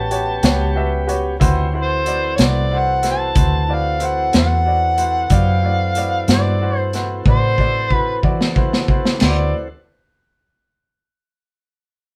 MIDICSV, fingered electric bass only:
0, 0, Header, 1, 2, 480
1, 0, Start_track
1, 0, Tempo, 650759
1, 1044, Time_signature, 12, 3, 24, 8
1, 8963, End_track
2, 0, Start_track
2, 0, Title_t, "Fingered electric bass"
2, 0, Program_c, 0, 33
2, 0, Note_on_c, 0, 33, 73
2, 301, Note_off_c, 0, 33, 0
2, 319, Note_on_c, 0, 37, 85
2, 1019, Note_off_c, 0, 37, 0
2, 1045, Note_on_c, 0, 38, 74
2, 1742, Note_off_c, 0, 38, 0
2, 1762, Note_on_c, 0, 36, 88
2, 2460, Note_off_c, 0, 36, 0
2, 2478, Note_on_c, 0, 38, 78
2, 3178, Note_off_c, 0, 38, 0
2, 3206, Note_on_c, 0, 40, 87
2, 3902, Note_off_c, 0, 40, 0
2, 3910, Note_on_c, 0, 42, 82
2, 4614, Note_off_c, 0, 42, 0
2, 4634, Note_on_c, 0, 43, 88
2, 5337, Note_off_c, 0, 43, 0
2, 5352, Note_on_c, 0, 45, 73
2, 6056, Note_off_c, 0, 45, 0
2, 6074, Note_on_c, 0, 52, 80
2, 6778, Note_off_c, 0, 52, 0
2, 6800, Note_on_c, 0, 38, 84
2, 7025, Note_off_c, 0, 38, 0
2, 8963, End_track
0, 0, End_of_file